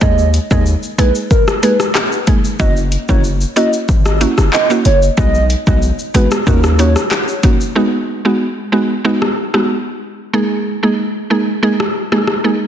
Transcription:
0.01 D#2 G#3 A#3 D#4 G#4 D#5, kick, shaker
0.18 shaker
0.34 closed hi-hat, shaker
0.51 D#2 G#3 A#3 D#4 G#4 D#5, kick, shaker
0.66 shaker
0.83 shaker
0.98 A#1 G#3 A#3 D#4 G#4 B4, closed hi-hat, shaker
1.15 shaker
1.31 A#4, kick, shaker
1.48 cross-stick, shaker
1.63 G#3 A#3 D#4 G#4 B4, closed hi-hat, shaker
1.80 cross-stick, shaker
1.95 cross-stick, clap, shaker
2.12 shaker
2.27 G#3 A#3 D#4 G#4, kick, closed hi-hat, shaker
2.45 shaker
2.60 F#1 A#3 C#4 E4 F#4 D#5, kick, shaker
2.77 shaker
2.92 closed hi-hat, shaker
3.09 F#1 A#3 C#4 E4 F#4 C#5, kick, shaker
3.24 shaker
3.41 shaker
3.56 A#3 C#4 E4 F#4 D#5, closed hi-hat, shaker
3.73 shaker
3.89 G#1, kick, shaker
4.06 cross-stick, shaker
4.21 A#3 C#4 E4 F#4, closed hi-hat, shaker
4.38 F#1, cross-stick, shaker
4.53 D#5, clap, shaker
4.70 A#3 C#4 E4 F#4, shaker
4.85 F#1 C#5, closed hi-hat, shaker
5.03 shaker
5.17 B1 G#3 B3 D#4 F#4 D#5, kick, shaker
5.35 shaker
5.50 closed hi-hat, shaker
5.67 B1 G#3 B3 D#4 F#4 D#5, kick, shaker
5.82 shaker
5.99 shaker
6.14 G#1 G#3 B3 D#4 F#4 B4, closed hi-hat, shaker
6.31 cross-stick, shaker
6.47 D#2 A#3 C#4 D#4 F#4 A#4, kick, shaker
6.64 cross-stick, shaker
6.79 A#3 C#4 D#4 F#4 C#5, closed hi-hat, shaker
6.96 cross-stick, shaker
7.11 cross-stick, clap, shaker
7.28 shaker
7.43 A#3 C#4 D#4 F#4, kick, closed hi-hat, shaker
7.61 shaker
7.75 G#3 B3 D#4 F#4
8.25 G#3 B3 D#4 F#4
8.72 G#3 B3 D#4 F#4
9.04 G#3 B3 D#4 F#4
9.22 cross-stick
9.54 G#3 B3 D#4 F#4, cross-stick
10.33 G#3 A#3 D#4 G#4
10.83 G#3 A#3 D#4 G#4
11.30 G#3 A#3 D#4 G#4
11.63 G#3 A#3 D#4 G#4
11.80 cross-stick
12.12 G#3 A#3 D#4 G#4, cross-stick
12.27 cross-stick
12.44 G#3 A#3 D#4 G#4

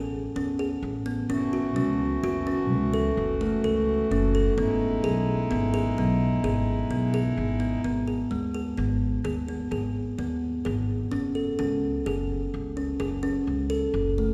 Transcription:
Already playing: A1 G#4
0.36 E2 C#4
0.59 G#4
0.82 A1
1.06 B3
1.29 F#1 E3 A3 C#4 F#4
1.53 F#4
1.76 C#2 C#4
2.23 F#1 F#4
2.47 C#4
2.70 C#2
2.93 A4
3.17 F#1
3.41 A3
3.64 C#2 A4
4.11 F#1 C#4
4.35 A4
4.57 G#1 G#3 B3 D#4 E4
5.04 B1 G#4
5.51 G#1 B3
5.74 G#4
5.98 B1 B3
6.44 G#1 G#4
6.90 B1 B3
7.14 G#4
7.37 G#1
7.60 B3
7.84 G#1 B3
8.08 G#4
8.31 D#2 G#3
8.54 G#4
8.78 G#1 B3
9.24 D#2 G#4
9.48 B3
9.71 G#1 G#4
10.18 D#2 B3
10.65 G#1 G#4
11.11 F#1 C#4
11.35 A4
11.59 C#2 C#4
12.06 F#1 G#4
12.54 C#2
12.77 C#4
13.00 F#1 G#4
13.23 C#4
13.47 C#2
13.70 A4
13.94 F#1
14.18 A3

